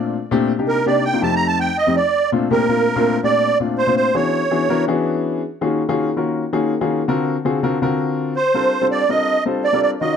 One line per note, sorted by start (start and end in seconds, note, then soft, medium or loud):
0.00 0.15 A#2 medium
0.00 0.15 A3 medium
0.00 0.15 C4 medium
0.00 0.15 D4 medium
0.00 0.15 F4 medium
0.31 0.50 A#2 loud
0.31 0.50 A3 loud
0.31 0.50 C4 medium
0.31 0.50 D4 medium
0.31 0.50 G4 loud
0.59 0.78 C3 medium
0.59 0.78 A#3 medium
0.59 0.78 D4 medium
0.59 0.78 D#4 medium
0.59 0.78 G4 medium
0.68 0.86 A#4 medium
0.86 1.05 C3 medium
0.86 1.05 A#3 medium
0.86 1.05 D4 medium
0.86 1.06 D#4 medium
0.86 1.06 G4 medium
0.86 1.04 D5 medium
1.05 1.22 G5 loud
1.13 1.20 C3 medium
1.13 1.20 A#3 medium
1.13 1.20 D4 medium
1.13 1.20 D#4 medium
1.13 1.20 F4 medium
1.22 1.67 F2 medium
1.22 1.67 A3 medium
1.22 1.67 C4 medium
1.22 1.67 D#4 medium
1.22 1.67 G4 medium
1.22 1.35 A5 medium
1.36 1.47 A#5 loud
1.48 1.59 A5 medium
1.60 1.77 G5 loud
1.78 1.95 D#5 loud
1.87 1.96 F2 medium
1.87 1.96 A3 medium
1.87 1.96 C4 medium
1.87 1.96 D#4 medium
1.87 1.96 G4 medium
1.97 2.30 D5 medium
2.32 2.45 A#2 medium
2.32 2.45 A3 medium
2.32 2.45 C4 medium
2.32 2.45 D4 medium
2.32 2.45 F4 medium
2.50 2.63 A#2 medium
2.50 2.63 A3 medium
2.50 2.63 C4 medium
2.50 2.64 D4 medium
2.50 2.64 G4 medium
2.50 3.20 A#4 loud
2.68 2.88 A#2 medium
2.68 2.88 A3 medium
2.68 2.88 C4 medium
2.68 2.88 D4 medium
2.68 2.88 F4 medium
2.96 3.15 A#2 medium
2.96 3.15 A3 medium
2.96 3.15 C4 medium
2.96 3.15 D4 medium
2.96 3.15 F4 loud
3.23 3.49 A#2 medium
3.23 3.49 A3 medium
3.23 3.49 C4 medium
3.23 3.49 D4 medium
3.23 3.49 G4 medium
3.23 3.58 D5 loud
3.60 3.79 A#2 medium
3.60 3.79 A3 medium
3.60 3.79 C4 medium
3.60 3.80 D4 medium
3.60 3.80 F4 medium
3.78 3.95 C5 medium
3.87 4.06 A#2 medium
3.87 4.07 A3 medium
3.87 4.07 C4 medium
3.87 4.07 D4 medium
3.87 4.07 F4 medium
3.97 4.16 C5 medium
4.14 4.40 E3 medium
4.14 4.40 B3 medium
4.14 4.40 C#4 medium
4.14 4.41 D4 medium
4.14 4.41 F#4 medium
4.14 4.41 G#4 medium
4.14 4.85 C#5 medium
4.51 4.64 E3 medium
4.51 4.64 B3 medium
4.51 4.64 C#4 medium
4.51 4.64 D4 medium
4.51 4.64 F#4 medium
4.51 4.64 G#4 medium
4.69 4.83 E3 medium
4.69 4.83 B3 medium
4.69 4.83 C#4 medium
4.69 4.83 D4 medium
4.69 4.83 F#4 medium
4.69 4.83 A#4 loud
4.88 5.39 E3 medium
4.88 5.39 B3 medium
4.88 5.40 C#4 medium
4.88 5.40 D4 medium
4.88 5.40 F#4 medium
4.88 5.40 G#4 loud
5.61 5.81 D#3 medium
5.61 5.81 A#3 medium
5.61 5.81 C#4 medium
5.61 5.81 F4 medium
5.61 5.81 F#4 medium
5.61 5.81 G#4 medium
5.89 6.08 D#3 loud
5.89 6.08 A#3 medium
5.89 6.08 C#4 medium
5.89 6.08 F4 medium
5.89 6.08 F#4 medium
5.89 6.08 G#4 loud
6.16 6.42 D#3 medium
6.16 6.42 A#3 medium
6.16 6.42 C#4 medium
6.16 6.42 F4 medium
6.16 6.43 F#4 medium
6.16 6.43 A#4 medium
6.53 6.72 D#3 medium
6.53 6.72 A#3 medium
6.53 6.72 C#4 medium
6.53 6.72 F4 medium
6.53 6.72 F#4 medium
6.53 6.73 G#4 loud
6.81 7.00 D#3 medium
6.81 7.00 A#3 medium
6.81 7.00 C#4 medium
6.81 7.00 F4 medium
6.81 7.00 F#4 medium
6.81 7.00 G#4 medium
7.08 7.34 D3 loud
7.08 7.34 C4 medium
7.08 7.34 F4 medium
7.08 7.34 F#4 medium
7.08 7.34 A#4 loud
7.45 7.58 D3 medium
7.45 7.58 C4 medium
7.45 7.58 F4 medium
7.45 7.58 F#4 medium
7.45 7.58 G#4 loud
7.63 7.76 D3 medium
7.63 7.76 C4 medium
7.63 7.76 F4 medium
7.63 7.76 F#4 medium
7.63 7.76 A#4 loud
7.82 8.33 D3 medium
7.82 8.33 C4 medium
7.82 8.33 F4 medium
7.82 8.33 F#4 medium
7.82 8.33 A#4 loud
8.36 8.87 C5 loud
8.54 8.74 G3 medium
8.54 8.74 C4 medium
8.54 8.74 D4 medium
8.54 8.74 F4 medium
8.54 8.74 A4 medium
8.54 8.74 A#4 medium
8.81 9.01 G3 medium
8.81 9.01 C4 medium
8.81 9.01 D4 medium
8.81 9.01 F4 medium
8.81 9.01 A4 medium
8.81 9.01 C5 medium
8.91 9.10 D5 loud
9.09 9.35 G3 medium
9.09 9.35 C4 medium
9.09 9.35 D4 medium
9.09 9.35 F4 medium
9.09 9.35 A4 medium
9.09 9.35 A#4 medium
9.09 9.44 D#5 loud
9.45 9.65 G3 medium
9.45 9.65 C4 medium
9.45 9.65 D4 medium
9.45 9.65 F4 medium
9.45 9.65 A4 medium
9.45 9.65 C5 medium
9.64 9.81 D5 loud
9.73 9.92 G3 medium
9.73 9.92 C4 medium
9.73 9.92 D4 medium
9.73 9.93 F4 medium
9.73 9.93 A4 medium
9.73 9.93 A#4 medium
9.82 9.91 D5 medium
10.01 10.17 D#3 medium
10.01 10.17 C#4 medium
10.01 10.17 F4 medium
10.01 10.17 F#4 medium
10.01 10.17 A#4 medium
10.01 10.17 D#5 medium